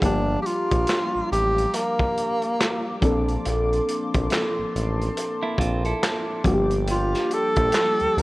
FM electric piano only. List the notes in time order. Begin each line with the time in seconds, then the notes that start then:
0.01 F3 G3 A#3 D4 G4
3.01 F3 A#3 C4 D4 A4
6.44 F3 G3 A#3 D4 F#4
6.54 G4